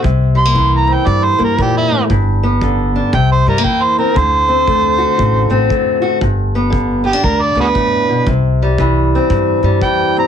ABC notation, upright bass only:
X:1
M:4/4
L:1/8
Q:"Swing" 1/4=117
K:C
V:1 name="Upright bass" clef=bass
C,,4 G,, G,, z2 | G,,,4 C,, G,, z2 | D,,4 A,,, A,,, z2 | G,,,4 D,, D,, z2 |
C,,4 G,, G,, z2 |]